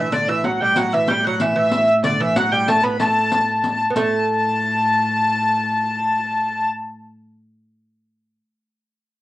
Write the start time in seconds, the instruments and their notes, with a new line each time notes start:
Already playing: viola da gamba A2, lute E3, hurdy-gurdy E5
0.11 viola da gamba A2, lute D3, hurdy-gurdy D5, riq
0.28 lute E3, hurdy-gurdy E5
0.44 lute F#3, hurdy-gurdy F#5, riq
0.61 lute G3, hurdy-gurdy G5
0.76 lute F#3, hurdy-gurdy F#5, riq
0.92 lute E3, hurdy-gurdy E5, riq
1.08 lute G3, hurdy-gurdy G5, riq
1.24 lute F#3, hurdy-gurdy F#5
1.40 lute E3, hurdy-gurdy E5, riq
1.56 lute E3, hurdy-gurdy E5
1.71 riq
1.88 riq
2.04 lute D3, hurdy-gurdy D5, riq
2.20 lute E3, hurdy-gurdy E5
2.36 lute F#3, hurdy-gurdy F#5, riq
2.52 lute G3, hurdy-gurdy G5
2.68 lute A3, hurdy-gurdy A5, riq
2.84 lute B3, hurdy-gurdy B5, riq
2.99 lute A3, hurdy-gurdy A5, riq
3.32 riq
3.48 riq
3.64 riq
3.90 lute B3
3.96 viola da gamba A2, lute A3, hurdy-gurdy A5, riq